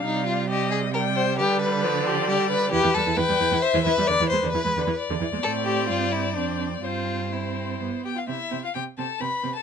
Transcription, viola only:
\new Staff \with { instrumentName = "Viola" } { \clef bass \time 3/4 \key g \phrygian \tempo 4 = 133 g2 g4 | g4 f8 f8 g4 | \key e \phrygian e16 e16 g16 e16 e16 g16 e16 e16 r16 e16 e16 g16 | d16 e16 gis16 d16 e16 gis16 d16 e16 r16 d16 e16 gis16 |
c'2 c'4 | c'4 c'4 b8 r8 | c'8 c'8 c'8 c'8 c'8 c'8 | }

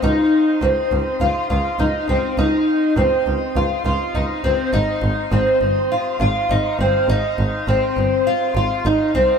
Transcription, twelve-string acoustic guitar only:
\new Staff \with { instrumentName = "Twelve-string acoustic guitar" } { \time 4/4 \key aes \major \tempo 4 = 102 ees'4 c'4 f'8 f'8 ees'8 c'8 | ees'4 c'4 f'8 f'8 ees'8 c'8 | ees'4 c'4 f'8 f'8 ees'8 c'8 | ees'4 c'4 f'8 f'8 ees'8 c'8 | }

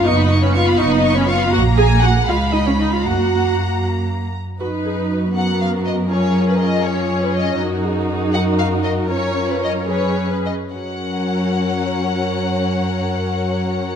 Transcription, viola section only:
\new Staff \with { instrumentName = "Viola section" } { \time 6/8 \key fis \major \tempo 4. = 79 << { dis'8. cis'16 eis'8 dis'8. cis'16 eis'8 | fis'8 gis'8 fis'8 eis'8 dis'16 cis'16 dis'16 eis'16 | fis'4. r4. | fis'8 gis'8 fis'2 |
eis'2. | fis'8 gis'8 gis'8 fis'4. | eis'4. gis'4 r8 | fis'2.~ |
fis'2. | } \\ { r2. | r2. | r2. | dis'4. b4. |
cis'4. cis'4. | dis'2. | cis'4. cis'4 r8 | cis'2.~ |
cis'2. | } >> }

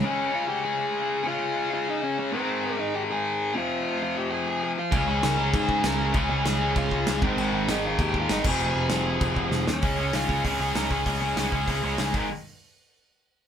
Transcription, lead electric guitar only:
\new Staff \with { instrumentName = "Lead electric guitar" } { \time 4/4 \key des \lydian \tempo 4 = 196 <des' des''>4 <f' f''>8 <g' g''>8 <aes' aes''>2 | <f' f''>4. <f' f''>8 <ees' ees''>8 <des' des''>8 <des' des''>8 <c' c''>8~ | <c' c''>4 <ees' ees''>8 <g' g''>8 <aes' aes''>4. <f' f''>8~ | <f' f''>4 <f' f''>8 <g' g''>8 <aes' aes''>8 <aes' aes''>8 <aes' aes''>8 <f' f''>8~ |
<f' f''>8 <aes' aes''>8 <bes' bes''>8 <bes' bes''>8 <aes' aes''>4 <bes' bes''>4 | <aes' aes''>8 <aes' aes''>8 <aes' aes''>4 <f' f''>4 r8 <c' c''>8~ | <c' c''>4 <ees' ees''>8 <f' f''>8 \tuplet 3/2 { <g' g''>4 <f' f''>8 } <ees' ees''>8 <aes' aes''>8~ | <aes' aes''>2.~ <aes' aes''>8 <des' des''>8~ |
<des' des''>4 <f' f''>4 <aes' aes''>4 <bes' bes''>8 <aes' aes''>8~ | <aes' aes''>2. r4 | r1 | }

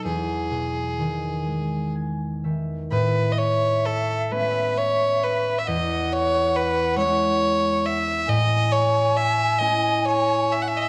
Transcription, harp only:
<<
  \new Staff \with { instrumentName = "Harp" } { \time 6/8 \key a \lydian \tempo 4. = 44 r2 gis''8 e''8 | r2. | r2. | r2. | }
  \new Staff \with { instrumentName = "Harp" } { \clef bass \time 6/8 \key a \lydian e,8 b,8 dis8 gis4 dis8 | a,4. <a b cis'>4. | e,4. <gis cis' e'>4. | a,4. <a cis' e'>4. | }
>>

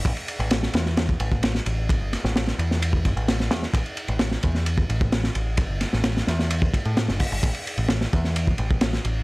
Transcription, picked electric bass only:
\new Staff \with { instrumentName = "Picked electric bass" } { \clef bass \time 4/4 \key c \major \tempo 4 = 130 a,,16 r8 a,,8 r16 e,8. r16 a,,8. r16 a,,8~ | a,,16 g,,16 r16 a,,8 r16 e,4 g,,16 a,,8. e,16 r16 | a,,16 r8 a,,8 r16 e,8. r16 a,,8. r16 a,,8~ | a,,16 g,,16 r16 a,,8 r16 e,8. r8 a,8 g,,16 r16 g,,16 |
a,,16 r8 a,,8 r16 e,8. r16 a,,8. r16 a,,8 | }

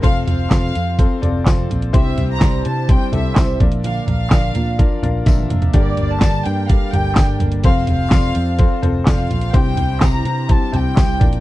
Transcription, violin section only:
\new Staff \with { instrumentName = "Violin section" } { \time 4/4 \key c \mixolydian \tempo 4 = 126 f''8 f''2 r4. | e''8. bes''8. a''8 g''8 e''4 r8 | f''8 f''2 r4. | d''8. a''8. g''8 f''8 g''4 r8 |
f''8 f''2 r8 f''4 | g''4 bes''4 a''8 g''4. | }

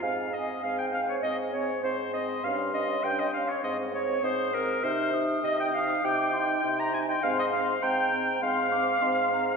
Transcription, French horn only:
\new Staff \with { instrumentName = "French horn" } { \time 4/4 \key aes \major \tempo 4 = 100 c'8 c'8 c'8 c'8 c'8 c'8 c'8 c'8 | des'8 des'8 des'8 des'8 c'8 c'8 c'8 c'8 | \key c \minor ees'8 ees'8 ees'8 ees'8 ees'8 ees'8 ees'8 ees'8 | c'8 c'8 c'8 c'8 c'8 c'8 c'8 c'8 | }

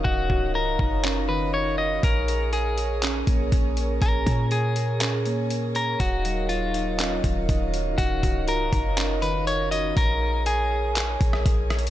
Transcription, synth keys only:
\new Staff \with { instrumentName = "Synth keys" } { \time 4/4 \key ees \minor \tempo 4 = 121 <ees des' ees' ges' ees''>8 ges'8 f'8 ees'8 des'8 ees8 ees''8 ges'8 | aes''8 des''8 bes'8 aes'8 des'8 bes8 aes''8 des''8 | aes''8 des''8 bes'8 aes'8 des'8 bes8 aes''8 des''8 | ees''8 ges8 f'8 ees'8 des'8 ees8 ees''8 ges'8 |
ees''8 ges'8 f'8 ees'8 des'8 ees8 ees''8 ges'8 | r1 | }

